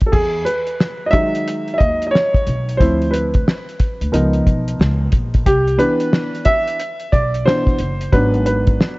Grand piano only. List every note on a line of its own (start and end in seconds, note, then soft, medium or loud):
0.06 0.12 A4 medium
0.12 0.44 G#4 medium
0.45 1.09 B4 medium
1.06 1.12 D#5 medium
1.11 2.76 D#3 medium
1.11 2.75 F#3 medium
1.11 2.76 G#3 medium
1.11 1.72 E5 loud
1.73 1.79 E5 medium
1.78 2.05 D#5 medium
2.07 2.12 D#5 medium
2.11 2.81 C#5 medium
2.77 3.27 F3 medium
2.77 3.28 C4 soft
2.77 3.28 E4 medium
2.77 3.13 C5 medium
3.11 5.08 B4 medium
4.12 5.42 F3 medium
4.12 5.42 B3 soft
4.12 5.43 D#4 medium
4.12 5.42 A#4 medium
5.46 5.81 G4 loud
5.78 6.75 E3 medium
5.78 6.75 B3 soft
5.78 6.75 D4 medium
5.78 6.48 B4 loud
6.45 7.15 E5 loud
7.12 7.44 D5 medium
7.45 7.76 B2 soft
7.45 7.76 E3 soft
7.45 7.77 D4 soft
7.45 8.15 C5 loud
8.12 8.99 F#3 medium
8.12 8.99 B3 medium
8.12 8.99 D4 medium
8.12 8.44 B4 medium
8.46 8.99 B4 medium